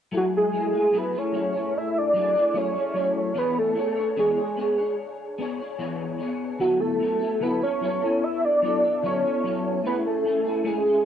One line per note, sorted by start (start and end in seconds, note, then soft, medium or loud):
0.12 0.51 F#3 medium
0.12 0.52 A3 medium
0.12 0.54 E4 medium
0.12 0.54 G#4 medium
0.17 0.25 F#4 medium
0.37 0.99 G#4 medium
0.52 0.73 F#3 soft
0.52 0.74 A3 soft
0.52 0.73 E4 medium
0.52 0.71 G#4 medium
0.72 0.92 A3 soft
0.72 0.93 E4 soft
0.72 0.93 G#4 soft
0.93 1.14 F#3 medium
0.93 1.14 A3 medium
0.93 1.14 E4 medium
0.93 1.11 G#4 medium
0.98 1.20 B4 loud
1.12 1.34 E4 soft
1.12 1.34 G#4 soft
1.16 1.32 A3 soft
1.16 1.79 C#5 loud
1.32 1.54 F#3 medium
1.32 1.54 A3 medium
1.32 1.53 E4 medium
1.32 1.51 G#4 medium
1.53 2.14 A3 soft
1.53 2.15 E4 soft
1.53 2.14 G#4 soft
1.77 1.99 E5 loud
1.98 2.58 D5 loud
2.13 2.35 F#3 medium
2.13 2.36 A3 medium
2.13 2.35 E4 medium
2.18 2.33 G#4 medium
2.34 2.54 E4 soft
2.34 2.55 G#4 medium
2.38 2.53 A3 soft
2.54 2.75 F#3 medium
2.54 2.76 A3 medium
2.54 2.74 E4 medium
2.54 2.72 G#4 medium
2.54 3.37 C#5 loud
2.73 2.95 E4 soft
2.73 2.95 G#4 soft
2.77 2.94 A3 soft
2.94 3.34 F#3 medium
2.94 3.35 A3 medium
2.94 3.35 E4 medium
2.94 3.35 G#4 medium
3.34 3.76 E3 medium
3.34 3.74 B3 medium
3.34 3.75 D4 medium
3.34 3.76 G#4 medium
3.34 3.60 B4 loud
3.34 3.77 C#5 medium
3.58 4.18 A4 loud
3.75 3.96 B3 medium
3.75 3.97 D4 medium
3.75 3.96 G#4 medium
3.75 3.94 C#5 medium
3.95 4.16 D4 soft
3.95 4.17 G#4 soft
3.95 4.17 C#5 medium
4.17 4.38 E3 medium
4.17 4.38 B3 medium
4.17 4.38 D4 medium
4.17 4.37 G#4 medium
4.17 4.95 G#4 medium
4.17 4.35 C#5 medium
4.36 4.57 D4 soft
4.36 4.58 G#4 soft
4.36 4.57 C#5 soft
4.57 4.78 B3 medium
4.57 4.79 D4 medium
4.57 4.78 G#4 medium
4.61 4.76 C#5 medium
4.77 5.39 D4 soft
4.77 5.39 G#4 soft
4.77 5.39 C#5 soft
5.38 5.59 B3 medium
5.38 5.60 D4 medium
5.38 5.59 G#4 medium
5.38 5.57 C#5 medium
5.58 5.80 G#4 soft
5.58 5.79 C#5 medium
5.62 5.78 D4 soft
5.78 6.20 E3 medium
5.78 6.17 B3 medium
5.78 6.18 D4 medium
5.78 6.20 G#4 medium
5.78 6.21 C#5 loud
6.18 6.59 B3 medium
6.18 6.60 D4 medium
6.18 6.61 G#4 medium
6.18 6.61 C#5 medium
6.59 7.00 D3 medium
6.59 6.98 F#3 medium
6.59 7.00 B3 medium
6.59 7.01 E4 medium
6.59 6.82 F#4 loud
6.59 7.01 A4 medium
6.80 7.44 A4 medium
7.00 7.20 F#3 medium
7.00 7.21 B3 medium
7.00 7.20 E4 medium
7.04 7.18 A4 medium
7.19 7.41 B3 soft
7.19 7.41 E4 soft
7.19 7.41 A4 soft
7.40 7.61 D3 medium
7.40 7.61 F#3 medium
7.40 7.62 B3 medium
7.40 7.62 E4 medium
7.40 7.60 A4 medium
7.40 7.62 B4 medium
7.61 7.82 E4 soft
7.61 7.81 A4 soft
7.61 8.25 C#5 loud
7.65 7.81 B3 soft
7.81 8.02 F#3 soft
7.81 8.02 B3 medium
7.81 8.02 E4 medium
7.81 7.99 A4 medium
8.01 8.63 E4 soft
8.01 8.62 A4 soft
8.05 8.63 B3 soft
8.24 8.46 E5 loud
8.45 9.04 D5 loud
8.62 8.83 F#3 medium
8.62 8.84 B3 medium
8.62 8.84 E4 medium
8.67 8.82 A4 medium
8.83 9.03 B3 soft
8.83 9.04 E4 soft
8.83 9.03 A4 medium
9.03 9.23 D3 medium
9.03 9.24 F#3 medium
9.03 9.24 B3 medium
9.03 9.24 E4 medium
9.03 9.21 A4 medium
9.03 9.81 C#5 loud
9.23 9.44 B3 soft
9.23 9.44 E4 soft
9.23 9.43 A4 soft
9.44 9.83 F#3 medium
9.44 9.85 B3 medium
9.44 9.85 E4 medium
9.44 9.86 A4 medium
9.84 10.23 A3 medium
9.84 10.25 C#4 medium
9.84 10.25 E4 medium
9.84 10.26 G#4 medium
9.84 9.95 B4 loud
10.06 10.68 A4 medium
10.25 10.45 A3 medium
10.25 10.45 C#4 medium
10.25 10.46 E4 medium
10.25 10.43 G#4 medium
10.45 10.64 C#4 soft
10.45 10.65 E4 soft
10.45 10.65 G#4 soft
10.64 10.85 A3 medium
10.64 10.85 C#4 medium
10.64 10.86 E4 medium
10.64 11.05 G#4 medium
10.64 10.84 G#4 medium
10.85 11.05 E4 soft
10.85 11.05 G#4 soft
10.89 11.04 C#4 soft